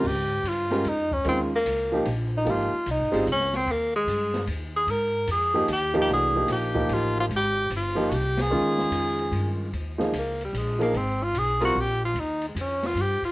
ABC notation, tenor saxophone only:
X:1
M:3/4
L:1/16
Q:"Swing" 1/4=149
K:Ab
V:1 name="Tenor saxophone"
G4 F4 E2 D2 | C2 B,6 z2 E2 | F4 E4 D2 C2 | B,2 A,6 z2 A2 |
B4 A4 G2 G2 | A4 G4 F2 F2 | G4 F3- F/2 _G/2 =G2 A2- | A8- A2 z2 |
[K:Ebmix] z4 B,2 G,2 A,2 B,2 | C2 F2 A2 _G2 =G2 F2 | E2 A,2 D2 F2 G2 F2 |]